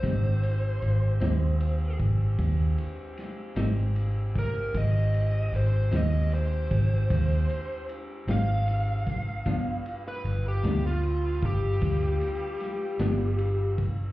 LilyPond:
<<
  \new Staff \with { instrumentName = "Lead electric guitar" } { \time 12/8 \key aes \lydian \tempo 4. = 51 c''2~ c''8 r2. bes'8 | ees''4 c''8 ees''8 c''2 r8 f''4.~ | f''8. b'8 g'8 f'8. g'2. r8 | }
  \new Staff \with { instrumentName = "Saxophone section" } { \time 12/8 \key aes \lydian <aes c' g'>1.~ | <aes c' g'>1. | <g b f'>1. | }
  \new Staff \with { instrumentName = "Clean electric guitar" } { \time 12/8 \key aes \lydian <aes, g c' ees'>8 r4 <aes, g c' ees'>8 r2 r8 <aes, g c' ees'>8 r4 | r4. <aes, g c' ees'>8 r2 r8 <aes, g c' ees'>8 r4 | <g, f b d'>8 r4 <g, f b d'>8 r2 r8 <g, f b d'>8 r4 | }
  \new Staff \with { instrumentName = "Fingered electric bass" } { \clef bass \time 12/8 \key aes \lydian aes,,4 aes,,8 ees,4 aes,,8 ees,8 r4 aes,,4. | aes,,4 aes,,8 ees,4 aes,,8 ees,8 r4 aes,,4. | g,,4 g,,8 d,4 g,,8 d,8 r4 g,,4. | }
  \new DrumStaff \with { instrumentName = "Drums" } \drummode { \time 12/8 <bd cymr>8 cymr8 cymr8 <cymr sn>8 cymr8 <bd cymr>8 <bd cymr>8 cymr8 <cymr sn>8 <cymr sn>8 cymr8 <bd cymr sn>8 | <bd cymr>8 cymr8 cymr8 <cymr sn>8 cymr8 <bd cymr>8 <bd cymr>8 cymr8 cymr8 <cymr sn>8 cymr8 <bd cymr sn>8 | <bd cymr>8 cymr8 cymr8 <cymr sn>8 cymr8 <bd cymr>8 <bd cymr>8 cymr8 <cymr sn>8 <cymr sn>8 cymr8 <bd cymr>8 | }
>>